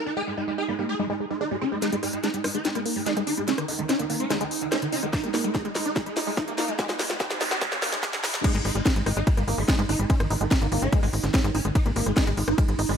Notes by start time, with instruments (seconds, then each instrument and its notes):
Already playing: synth texture D#4
0.06 digital synth lead D#4
0.17 acid bass G#3, digital synth lead G#4
0.27 digital synth lead G#3
0.37 digital synth lead G#3, acid bass D#4
0.48 acid bass G#3, digital synth lead G#3
0.58 acid bass D#4, digital synth lead G#4
0.68 digital synth lead G#3, acid bass A#3
0.79 digital synth lead G#3, acid bass A#3
0.89 acid bass G#3, digital synth lead G#4
0.99 acid bass G#3, digital synth lead G#3
1.10 acid bass G#3, digital synth lead G#3
1.20 acid bass G#3
1.30 digital synth lead G#3, acid bass D#4
1.41 acid bass G#3, digital synth lead D#4
1.51 acid bass G3, digital synth lead G#3
1.61 acid bass G#3, digital synth lead C#4
1.72 acid bass G#3, digital synth lead G#3
1.82 acid bass G#3, synth texture D#4, digital synth lead D#4, snare, closed hi-hat, riser
1.92 acid bass G#3, digital synth lead G#3, closed hi-hat
2.03 digital synth lead G#3, cross-stick, open hi-hat
2.13 digital synth lead G#3, closed hi-hat
2.24 acid bass G#3, digital synth lead D#4, snare, closed hi-hat
2.34 digital synth lead G#3, closed hi-hat
2.44 digital synth lead G#3, acid bass D#4, cross-stick, open hi-hat
2.55 acid bass G#3, digital synth lead D#4, closed hi-hat
2.65 digital synth lead G#3, acid bass D#4, snare, closed hi-hat
2.75 digital synth lead G#3, acid bass A#3, cross-stick, closed hi-hat
2.86 acid bass A#3, open hi-hat
2.96 acid bass G#3, digital synth lead G#3, open hi-hat
3.06 acid bass G#3, digital synth lead D#4, snare, closed hi-hat
3.17 acid bass G#3, digital synth lead G#3, cross-stick, closed hi-hat
3.27 digital synth lead D#4, open hi-hat
3.37 digital synth lead G#3, closed hi-hat
3.48 acid bass G#3, digital synth lead C#4, snare, closed hi-hat
3.58 digital synth lead D#3, cross-stick, closed hi-hat
3.68 digital synth lead D#3, acid bass D#4, open hi-hat
3.79 digital synth lead D#3, acid bass G#3, closed hi-hat
3.89 digital synth lead C#4, acid bass D#4, cross-stick, snare, closed hi-hat
3.99 digital synth lead D#3, acid bass A#3, closed hi-hat
4.10 digital synth lead D#3, acid bass A#3, open hi-hat
4.20 acid bass G#3, digital synth lead C#4, closed hi-hat
4.30 digital synth lead D#3, acid bass G#3, cross-stick, snare, closed hi-hat
4.41 digital synth lead D#3, acid bass G#3, closed hi-hat
4.51 open hi-hat
4.61 digital synth lead D#3, closed hi-hat
4.72 acid bass G#3, digital synth lead C#4, cross-stick, snare, closed hi-hat
4.82 digital synth lead D#3, closed hi-hat
4.92 digital synth lead C#4, acid bass D#4, open hi-hat
5.03 digital synth lead D#3, acid bass G#3, cross-stick, closed hi-hat
5.13 acid bass D#4, digital synth lead D#4, kick, snare, closed hi-hat
5.24 digital synth lead G#3, acid bass A#3, closed hi-hat
5.34 digital synth lead G#3, acid bass A#3, snare, open hi-hat
5.44 acid bass G#3, digital synth lead G#3, closed hi-hat
5.55 acid bass G#3, digital synth lead D#4, kick, snare, closed hi-hat
5.65 acid bass G#3, digital synth lead G#3, closed hi-hat
5.75 digital synth lead G#3, snare, open hi-hat
5.86 digital synth lead D#4
5.96 digital synth lead G#3, acid bass G#3, kick, snare, closed hi-hat
6.06 digital synth lead G#3, closed hi-hat
6.17 acid bass D#4, snare, open hi-hat
6.27 acid bass G#3, digital synth lead G#3, open hi-hat
6.37 digital synth lead D#4, acid bass D#4, kick, snare, closed hi-hat
6.48 digital synth lead G#3, acid bass A#3, closed hi-hat
6.58 acid bass A#3, digital synth lead D#4, snare, open hi-hat
6.68 digital synth lead G#3, acid bass G#3, closed hi-hat
6.79 acid bass G#3, digital synth lead G4, kick, snare, closed hi-hat, noise sweep
6.89 digital synth lead G#3, acid bass G#3, snare, closed hi-hat
6.99 digital synth lead G#3, snare, open hi-hat
7.10 digital synth lead G#3, snare, closed hi-hat
7.20 acid bass G#3, digital synth lead G4, kick, snare, closed hi-hat
7.30 digital synth lead G#3, snare, closed hi-hat
7.41 digital synth lead G#3, acid bass D#4, snare, open hi-hat
7.51 acid bass G#3, digital synth lead G4, snare, closed hi-hat
7.61 digital synth lead G#3, acid bass D#4, kick, snare, closed hi-hat
7.72 digital synth lead G#3, acid bass A#3, snare, closed hi-hat
7.82 acid bass A#3, snare, open hi-hat
7.92 digital synth lead G#3, acid bass G#3, snare, closed hi-hat
8.03 acid bass G#3, digital synth lead G4, kick, snare, closed hi-hat
8.13 digital synth lead G#3, acid bass G#3, snare, closed hi-hat
8.23 digital synth lead E4, snare, open hi-hat
8.34 digital synth lead G#3, snare
8.44 acid bass G#3, digital synth lead D#4, synth texture D#4, kick, closed hi-hat, crash, ride
8.54 analog synth bass G#1, digital synth lead G#3, acid bass G#3, closed hi-hat
8.65 analog synth bass G#1, digital synth lead G#3, cross-stick, open hi-hat
8.75 analog synth bass G#1, digital synth lead G#3, closed hi-hat
8.86 acid bass G#3, digital synth lead D#4, kick, snare, closed hi-hat, ride
8.96 analog synth bass G#1, digital synth lead G#3, closed hi-hat
9.06 analog synth bass G#1, digital synth lead G#3, acid bass D#4, cross-stick, open hi-hat
9.17 analog synth bass G#1, acid bass G#3, digital synth lead D#4, closed hi-hat
9.27 digital synth lead G#3, acid bass D#4, kick, closed hi-hat, ride
9.37 analog synth bass G#1, digital synth lead G#3, acid bass A#3, cross-stick, closed hi-hat
9.48 analog synth bass G#1, acid bass A#3, open hi-hat
9.58 analog synth bass G#1, acid bass G#3, digital synth lead G#3, open hi-hat
9.68 acid bass G#3, digital synth lead D#4, kick, snare, closed hi-hat, ride
9.79 analog synth bass G#2, acid bass G#3, digital synth lead G#3, cross-stick, closed hi-hat
9.89 analog synth bass G#1, digital synth lead D#4, open hi-hat
9.99 analog synth bass G#1, digital synth lead G#3, closed hi-hat
10.10 acid bass G#3, digital synth lead C#4, kick, closed hi-hat, ride
10.20 analog synth bass G#1, digital synth lead D#3, cross-stick, closed hi-hat
10.30 analog synth bass G#1, digital synth lead D#3, acid bass D#4, open hi-hat
10.41 analog synth bass G#1, digital synth lead D#3, acid bass G#3, closed hi-hat
10.51 digital synth lead C#4, acid bass D#4, kick, cross-stick, snare, closed hi-hat, ride
10.61 analog synth bass G#1, digital synth lead D#3, acid bass A#3, closed hi-hat
10.72 analog synth bass G#1, digital synth lead D#3, acid bass A#3, open hi-hat
10.82 analog synth bass G#1, acid bass G#3, digital synth lead C#4, closed hi-hat
10.92 acid bass G#3, kick, cross-stick, closed hi-hat, ride
11.03 analog synth bass G#1, digital synth lead D#3, acid bass G#3, open hi-hat
11.13 analog synth bass G#1, open hi-hat
11.24 analog synth bass G#1, digital synth lead D#3, snare, closed hi-hat
11.34 acid bass G#3, digital synth lead C#4, kick, cross-stick, snare, closed hi-hat, ride
11.44 analog synth bass G#2, digital synth lead D#3, closed hi-hat
11.55 analog synth bass G#1, digital synth lead C#4, acid bass D#4, open hi-hat
11.65 analog synth bass G#1, digital synth lead D#3, acid bass G#3, cross-stick, closed hi-hat
11.75 acid bass D#4, digital synth lead D#4, kick, closed hi-hat, ride
11.86 analog synth bass G#1, digital synth lead G#3, acid bass A#3, closed hi-hat
11.96 analog synth bass G#1, digital synth lead G#3, acid bass A#3, open hi-hat
12.06 analog synth bass G#1, acid bass G#3, digital synth lead G#3, cross-stick, closed hi-hat
12.17 acid bass G#3, digital synth lead D#4, kick, snare, closed hi-hat, ride
12.27 analog synth bass G#1, acid bass G#3, digital synth lead G#3, closed hi-hat
12.37 analog synth bass G#1, digital synth lead G#3, open hi-hat
12.48 analog synth bass G#1, digital synth lead D#4, cross-stick, closed hi-hat
12.58 acid bass G#3, digital synth lead G#3, kick, closed hi-hat, ride
12.68 analog synth bass G#1, digital synth lead G#3, closed hi-hat
12.79 analog synth bass G#1, acid bass D#4, cross-stick, open hi-hat
12.89 analog synth bass G#1, acid bass G#3, digital synth lead G#3, open hi-hat